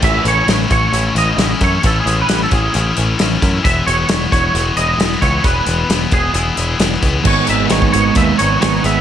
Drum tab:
CC |x---------------|----------------|----------------|----------------|
HH |x-x-x-x-x-x-x-x-|x-x-x-x-x-x-x-x-|x-x-x-x-x-x-x-x-|x-x-x-x-x-x-x-x-|
SD |----o-------o---|----o-------o---|----o-------o---|----o-------o---|
BD |o-----o-------o-|o-----o-------o-|o-----o-------o-|o-----o-------o-|

CC |x---------------|
HH |--x-x-x-x-x-x-x-|
SD |----o-------o---|
BD |o----o--o-------|